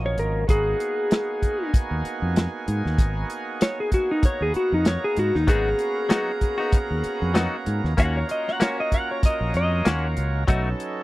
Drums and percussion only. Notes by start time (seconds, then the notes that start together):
0.18 closed hi-hat
0.49 kick, closed hi-hat
0.80 closed hi-hat
1.11 snare, closed hi-hat
1.42 kick, closed hi-hat
1.74 kick, closed hi-hat
2.05 closed hi-hat
2.36 snare, closed hi-hat
2.68 closed hi-hat
2.86 snare
2.98 kick, closed hi-hat
3.30 closed hi-hat
3.61 snare, closed hi-hat
3.92 kick, closed hi-hat
4.23 kick, closed hi-hat
4.54 closed hi-hat
4.85 snare, closed hi-hat
5.16 closed hi-hat
5.35 snare
5.48 kick, closed hi-hat
5.79 closed hi-hat
6.10 snare, closed hi-hat
6.41 kick, closed hi-hat
6.72 kick, closed hi-hat
7.04 closed hi-hat
7.35 snare, closed hi-hat
7.66 closed hi-hat
7.85 snare
7.98 kick, closed hi-hat
8.29 closed hi-hat
8.48 snare
8.61 snare, closed hi-hat
8.92 kick, closed hi-hat
9.23 kick, closed hi-hat
9.54 closed hi-hat
9.85 snare, closed hi-hat
10.17 closed hi-hat
10.48 kick, closed hi-hat
10.80 closed hi-hat